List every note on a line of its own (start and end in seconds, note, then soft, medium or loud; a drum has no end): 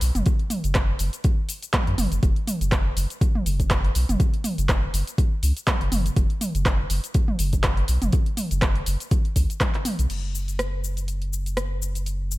0.01 0.11 B1 medium
0.01 open hi-hat medium
0.01 cabasa medium
0.15 0.23 F#1 loud
0.15 closed hi-hat soft
0.15 mid tom medium
0.15 cabasa medium
0.26 kick loud
0.26 closed hi-hat medium
0.26 cabasa soft
0.39 closed hi-hat soft
0.50 mid tom medium
0.50 open hi-hat medium
0.50 cabasa loud
0.64 0.95 F#1 medium
0.64 closed hi-hat soft
0.64 cabasa medium
0.75 kick loud
0.75 cross-stick loud
0.75 clap loud
0.75 closed hi-hat medium
0.75 cabasa soft
0.99 1.10 F#1 loud
0.99 open hi-hat medium
0.99 cabasa loud
1.13 closed hi-hat soft
1.13 cabasa medium
1.24 kick loud
1.24 closed hi-hat medium
1.24 cabasa soft
1.49 open hi-hat medium
1.49 cabasa loud
1.63 closed hi-hat soft
1.63 cabasa medium
1.74 kick loud
1.74 cross-stick loud
1.74 clap loud
1.74 closed hi-hat medium
1.74 mid tom medium
1.74 cabasa soft
1.87 1.95 F#2 medium
1.87 closed hi-hat soft
1.98 2.08 F#1 loud
1.98 mid tom loud
1.98 open hi-hat medium
1.98 cabasa loud
2.12 2.20 F#1 medium
2.12 closed hi-hat soft
2.12 cabasa medium
2.23 2.33 F#1 loud
2.23 kick loud
2.23 closed hi-hat medium
2.23 cabasa soft
2.36 closed hi-hat soft
2.47 mid tom medium
2.47 open hi-hat medium
2.47 cabasa medium
2.61 2.91 F#1 loud
2.61 closed hi-hat soft
2.61 cabasa medium
2.72 kick loud
2.72 cross-stick medium
2.72 clap loud
2.72 closed hi-hat medium
2.72 cabasa soft
2.96 3.06 F#1 loud
2.96 open hi-hat medium
2.96 cabasa medium
3.10 closed hi-hat soft
3.10 cabasa medium
3.21 kick loud
3.21 closed hi-hat medium
3.21 cabasa soft
3.35 mid tom medium
3.46 3.90 F#1 medium
3.46 open hi-hat medium
3.46 cabasa medium
3.60 kick medium
3.60 closed hi-hat soft
3.60 cabasa medium
3.71 kick loud
3.71 cross-stick loud
3.71 clap loud
3.71 closed hi-hat medium
3.71 cabasa soft
3.85 closed hi-hat soft
3.95 4.05 B1 medium
3.95 open hi-hat medium
3.95 cabasa medium
4.09 4.17 F#1 loud
4.09 closed hi-hat soft
4.09 mid tom loud
4.09 cabasa medium
4.20 kick loud
4.20 closed hi-hat medium
4.20 cabasa soft
4.34 closed hi-hat soft
4.44 mid tom medium
4.44 open hi-hat medium
4.44 cabasa medium
4.58 4.88 F#1 loud
4.58 closed hi-hat soft
4.58 cabasa medium
4.69 kick loud
4.69 cross-stick loud
4.69 clap loud
4.69 closed hi-hat medium
4.69 cabasa soft
4.94 5.03 F#1 loud
4.94 open hi-hat medium
4.94 cabasa medium
5.07 closed hi-hat soft
5.07 cabasa medium
5.18 kick loud
5.18 closed hi-hat medium
5.18 cabasa soft
5.43 5.52 C#2 medium
5.43 open hi-hat medium
5.43 cabasa medium
5.57 closed hi-hat soft
5.57 cabasa soft
5.67 kick loud
5.67 cross-stick loud
5.67 clap loud
5.67 closed hi-hat medium
5.67 mid tom medium
5.67 cabasa soft
5.81 5.89 F#1 loud
5.81 closed hi-hat soft
5.92 6.10 F#1 loud
5.92 mid tom medium
5.92 open hi-hat medium
5.92 cabasa medium
6.06 closed hi-hat soft
6.06 cabasa soft
6.16 6.26 F#1 loud
6.16 kick loud
6.16 closed hi-hat medium
6.16 cabasa soft
6.30 closed hi-hat soft
6.41 mid tom medium
6.41 open hi-hat medium
6.41 cabasa medium
6.55 6.85 F#1 loud
6.55 closed hi-hat soft
6.55 cabasa soft
6.66 kick loud
6.66 cross-stick loud
6.66 clap loud
6.66 closed hi-hat medium
6.66 cabasa soft
6.90 7.00 F#1 loud
6.90 open hi-hat medium
6.90 cabasa medium
7.04 closed hi-hat soft
7.04 cabasa medium
7.14 kick loud
7.14 closed hi-hat medium
7.14 cabasa soft
7.28 mid tom medium
7.39 7.83 F#1 medium
7.39 open hi-hat medium
7.39 cabasa medium
7.53 kick medium
7.53 closed hi-hat soft
7.53 cabasa soft
7.64 kick loud
7.64 cross-stick loud
7.64 clap loud
7.64 closed hi-hat medium
7.64 cabasa soft
7.77 closed hi-hat soft
7.88 7.98 B1 medium
7.88 open hi-hat medium
7.88 cabasa medium
8.02 8.10 F#1 loud
8.02 closed hi-hat soft
8.02 mid tom medium
8.02 cabasa soft
8.12 kick loud
8.12 closed hi-hat medium
8.12 cabasa soft
8.26 closed hi-hat soft
8.37 mid tom medium
8.37 open hi-hat medium
8.37 cabasa medium
8.51 8.82 F#1 medium
8.51 closed hi-hat soft
8.51 cabasa soft
8.62 kick loud
8.62 cross-stick loud
8.62 clap loud
8.62 closed hi-hat medium
8.62 cabasa soft
8.76 closed hi-hat soft
8.86 8.97 F#1 loud
8.86 open hi-hat loud
8.86 cabasa medium
9.00 closed hi-hat soft
9.00 cabasa medium
9.11 kick loud
9.11 closed hi-hat medium
9.11 cabasa soft
9.25 closed hi-hat soft
9.36 9.46 C#2 medium
9.36 kick medium
9.36 open hi-hat medium
9.36 cabasa medium
9.50 closed hi-hat soft
9.50 cabasa soft
9.61 kick loud
9.61 cross-stick loud
9.61 clap loud
9.61 closed hi-hat medium
9.61 mid tom medium
9.61 cabasa soft
9.74 clap soft
9.74 closed hi-hat soft
9.85 mid tom medium
9.85 open hi-hat medium
9.85 cabasa medium
9.99 10.07 B1 loud
9.99 closed hi-hat soft
9.99 cabasa medium
10.10 12.38 F#1 medium
10.10 closed hi-hat medium
10.10 crash medium
10.10 cabasa soft
10.35 cabasa medium
10.48 closed hi-hat soft
10.48 cabasa soft
10.59 cross-stick loud
10.59 closed hi-hat medium
10.59 cabasa soft
10.84 cabasa medium
10.97 closed hi-hat soft
10.97 cabasa soft
11.08 closed hi-hat medium
11.08 cabasa soft
11.22 closed hi-hat soft
11.33 cabasa medium
11.46 closed hi-hat soft
11.46 cabasa soft
11.57 cross-stick loud
11.57 closed hi-hat soft
11.57 cabasa soft
11.82 cabasa medium
11.95 closed hi-hat soft
11.95 cabasa soft
12.06 closed hi-hat medium
12.06 cabasa soft
12.31 cabasa medium